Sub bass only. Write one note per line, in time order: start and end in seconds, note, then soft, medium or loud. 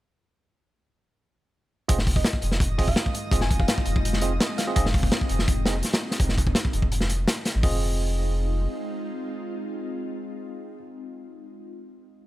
1.89 2.24 F1 loud
2.42 2.95 F1 medium
3.31 3.67 F1 loud
3.86 4.39 F1 medium
4.76 5.11 F1 loud
5.30 5.82 F1 medium
6.20 6.54 F1 loud
6.73 7.26 F1 medium
7.55 7.63 G#1 medium
7.63 8.67 F1 loud